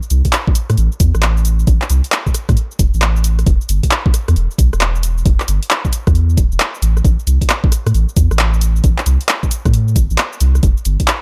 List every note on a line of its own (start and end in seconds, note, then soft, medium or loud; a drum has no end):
0.03 shaker soft
0.10 0.22 C2 medium
0.10 closed hi-hat loud
0.10 shaker medium
0.25 kick medium
0.25 closed hi-hat medium
0.25 shaker soft
0.33 clap loud
0.33 closed hi-hat medium
0.33 shaker soft
0.47 kick loud
0.55 closed hi-hat loud
0.55 shaker medium
0.70 0.76 A2 medium
0.70 cross-stick medium
0.70 closed hi-hat soft
0.70 shaker soft
0.77 0.89 A1 medium
0.77 closed hi-hat medium
0.77 shaker soft
0.92 shaker soft
1.00 1.12 E2 loud
1.00 kick loud
1.00 closed hi-hat loud
1.00 shaker medium
1.14 1.65 A1 loud
1.14 cross-stick medium
1.14 shaker soft
1.22 clap loud
1.22 closed hi-hat medium
1.22 shaker soft
1.37 shaker soft
1.45 closed hi-hat loud
1.45 shaker medium
1.59 shaker soft
1.67 1.79 A1 loud
1.67 kick loud
1.67 closed hi-hat medium
1.67 shaker soft
1.82 clap medium
1.82 shaker soft
1.90 2.01 C2 medium
1.90 closed hi-hat loud
1.90 shaker medium
2.04 closed hi-hat medium
2.04 shaker soft
2.12 clap loud
2.12 closed hi-hat medium
2.12 shaker soft
2.27 kick medium
2.27 shaker soft
2.34 cross-stick soft
2.34 closed hi-hat loud
2.34 shaker medium
2.49 2.55 A2 medium
2.49 kick loud
2.49 cross-stick medium
2.49 closed hi-hat soft
2.49 shaker soft
2.57 closed hi-hat medium
2.57 shaker soft
2.71 shaker soft
2.79 2.91 E1 medium
2.79 kick loud
2.79 closed hi-hat loud
2.79 shaker medium
2.94 3.44 A1 medium
2.94 shaker soft
3.02 clap loud
3.02 closed hi-hat medium
3.02 shaker soft
3.16 shaker soft
3.24 closed hi-hat loud
3.24 shaker medium
3.39 cross-stick soft
3.39 closed hi-hat soft
3.39 shaker soft
3.46 3.58 E1 loud
3.46 kick loud
3.46 closed hi-hat medium
3.46 shaker soft
3.61 shaker soft
3.69 3.80 G1 medium
3.69 closed hi-hat loud
3.69 shaker medium
3.83 kick medium
3.83 closed hi-hat medium
3.83 shaker soft
3.91 clap loud
3.91 closed hi-hat medium
3.91 shaker soft
4.06 kick loud
4.14 cross-stick soft
4.14 closed hi-hat loud
4.14 shaker medium
4.28 4.35 E2 medium
4.28 cross-stick medium
4.28 closed hi-hat soft
4.28 shaker soft
4.36 4.48 E1 medium
4.36 closed hi-hat medium
4.36 shaker soft
4.51 shaker soft
4.58 4.70 B1 loud
4.58 kick loud
4.58 closed hi-hat loud
4.58 shaker medium
4.73 5.23 E1 loud
4.73 cross-stick medium
4.73 shaker soft
4.81 clap loud
4.81 closed hi-hat medium
4.81 shaker soft
4.95 shaker soft
5.03 closed hi-hat loud
5.03 shaker medium
5.18 shaker soft
5.26 5.37 E1 loud
5.26 kick loud
5.26 closed hi-hat medium
5.26 shaker soft
5.40 clap medium
5.40 shaker soft
5.48 5.59 G1 medium
5.48 closed hi-hat loud
5.48 shaker medium
5.63 closed hi-hat medium
5.63 shaker soft
5.71 clap loud
5.71 closed hi-hat medium
5.71 shaker soft
5.85 kick medium
5.85 shaker soft
5.93 closed hi-hat loud
5.93 shaker medium
6.07 6.39 E2 medium
6.07 kick loud
6.07 cross-stick medium
6.07 closed hi-hat soft
6.07 shaker soft
6.15 closed hi-hat medium
6.15 shaker soft
6.30 shaker soft
6.37 6.49 D1 medium
6.37 kick loud
6.37 closed hi-hat loud
6.37 shaker medium
6.52 6.58 E1 medium
6.52 shaker soft
6.60 clap loud
6.60 closed hi-hat medium
6.60 shaker soft
6.75 shaker soft
6.82 7.01 A1 medium
6.82 closed hi-hat loud
6.82 shaker medium
6.97 cross-stick soft
6.97 shaker soft
7.05 7.16 A1 loud
7.05 kick loud
7.05 closed hi-hat medium
7.05 shaker soft
7.19 shaker soft
7.27 7.38 C2 medium
7.27 closed hi-hat loud
7.27 shaker medium
7.41 kick medium
7.41 closed hi-hat medium
7.41 shaker soft
7.50 clap loud
7.50 closed hi-hat medium
7.50 shaker soft
7.64 kick loud
7.72 cross-stick soft
7.72 closed hi-hat loud
7.72 shaker medium
7.86 7.93 A2 medium
7.86 cross-stick medium
7.86 closed hi-hat soft
7.86 shaker soft
7.94 8.06 A1 medium
7.94 closed hi-hat medium
7.94 shaker soft
8.09 shaker soft
8.17 8.28 E2 loud
8.17 kick loud
8.17 closed hi-hat loud
8.17 shaker medium
8.31 8.81 A1 loud
8.31 cross-stick medium
8.31 shaker soft
8.39 clap loud
8.39 closed hi-hat medium
8.39 shaker soft
8.54 shaker soft
8.61 closed hi-hat loud
8.61 shaker medium
8.76 shaker soft
8.84 8.95 A1 loud
8.84 kick loud
8.84 closed hi-hat medium
8.84 shaker soft
8.98 clap medium
8.98 shaker soft
9.06 9.18 C2 medium
9.06 closed hi-hat loud
9.06 shaker medium
9.21 closed hi-hat medium
9.21 shaker soft
9.29 clap loud
9.29 closed hi-hat medium
9.29 shaker soft
9.43 kick medium
9.43 shaker soft
9.51 closed hi-hat loud
9.51 shaker medium
9.65 9.97 A2 medium
9.65 kick loud
9.65 cross-stick medium
9.65 closed hi-hat soft
9.65 shaker soft
9.74 closed hi-hat medium
9.74 shaker soft
9.88 shaker soft
9.96 10.07 G1 medium
9.96 kick loud
9.96 closed hi-hat loud
9.96 shaker medium
10.10 10.17 A1 medium
10.10 shaker soft
10.18 clap loud
10.18 closed hi-hat medium
10.18 shaker soft
10.33 shaker soft
10.40 10.60 C2 medium
10.40 closed hi-hat loud
10.40 shaker medium
10.55 cross-stick soft
10.55 shaker soft
10.63 10.74 E1 loud
10.63 kick loud
10.63 closed hi-hat medium
10.63 shaker soft
10.77 shaker soft
10.85 10.97 G1 medium
10.85 closed hi-hat loud
10.85 shaker medium
11.00 kick medium
11.00 closed hi-hat medium
11.00 shaker soft
11.08 clap loud
11.08 closed hi-hat medium
11.08 shaker soft